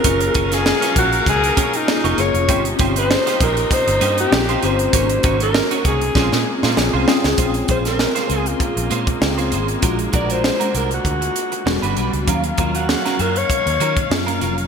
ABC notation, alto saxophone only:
X:1
M:4/4
L:1/16
Q:"Swing 16ths" 1/4=98
K:Bbm
V:1 name="Alto saxophone"
B3 A3 G2 A3 E3 d2- | d z2 c3 B2 c3 =G3 c2- | c3 B3 A6 z4 | z2 c B3 A F6- F z2 |
z2 =d c3 B G6- G z2 | z2 F G3 B d6 z3 |]